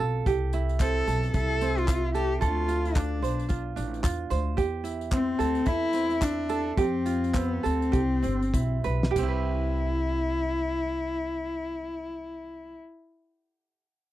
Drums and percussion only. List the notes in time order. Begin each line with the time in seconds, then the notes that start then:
0.26 kick, tambourine
0.53 tambourine
0.69 tambourine
0.80 kick, clap, tambourine
1.07 tambourine
1.23 tambourine
1.34 kick, tambourine
1.61 tambourine
1.78 tambourine
1.88 kick, clap, tambourine
2.15 tambourine
2.42 kick, tambourine
2.69 tambourine
2.85 tambourine
2.95 kick, clap, tambourine
3.24 tambourine
3.39 tambourine
3.49 kick, tambourine
3.77 tambourine
3.94 tambourine
4.04 kick, clap, tambourine
4.31 tambourine
4.58 kick, tambourine
4.85 tambourine
5.01 tambourine
5.11 kick, clap, tambourine
5.40 tambourine
5.55 tambourine
5.66 kick, tambourine
5.93 tambourine
5.94 tambourine
6.10 tambourine
6.22 kick, clap, tambourine
6.49 tambourine
6.77 kick, tambourine
7.06 tambourine
7.24 tambourine
7.34 kick, clap, tambourine
7.64 tambourine
7.66 tambourine
7.82 tambourine
7.93 kick, tambourine
8.23 tambourine
8.42 tambourine
8.54 kick, tambourine
8.84 tambourine
9.03 snare
9.16 kick, crash, tambourine